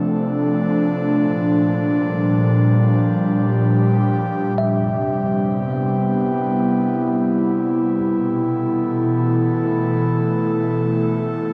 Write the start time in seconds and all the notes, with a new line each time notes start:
Already playing: C3 F3 A3 D4 A4
1.16 A#2
1.64 G3
2.68 G4
4.58 C3 E5
5.35 B3
6.09 E4
7.95 B2
8.38 A4
8.55 E3
9.00 A3
11.35 C3